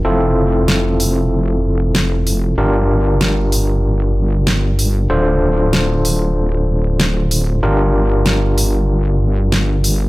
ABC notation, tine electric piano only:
X:1
M:4/4
L:1/8
Q:"Swing 16ths" 1/4=95
K:Gdor
V:1 name="Tine electric piano"
[CEFA]8 | [DFGB]8 | [DFAc]8 | [DFGB]8 |]